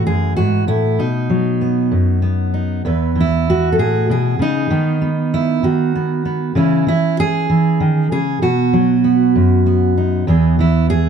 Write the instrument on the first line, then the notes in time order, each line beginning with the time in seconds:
steel-string acoustic guitar
Already playing: E3
0.07 F#2 G#4
0.37 G#2 F#4
0.67 A2 E4
0.99 B2 D#4
1.30 F#3
1.61 B3
1.92 F#2
2.22 B3
2.54 D#4
2.85 E2 E3 B3 B4
3.15 E3
3.20 E4
3.50 F#4
3.72 A4
3.78 A2 G#4
4.10 B2 G#4
4.39 C#3 D#4
4.70 D#3 B3
5.02 B3
5.34 E4
5.63 D#3 F#4
5.96 B3
6.25 B3
6.55 C#3 E3 C#4 E4
6.87 E3 E4
7.20 G#4
7.50 E3
7.80 D#3
8.12 C#3 G#4
8.42 B2 F#4
8.73 F#3
9.04 B3
9.35 F#2
9.66 B3
9.97 D#4
10.27 E2 E3 B3 G#4
10.59 E3 E4
10.90 G#4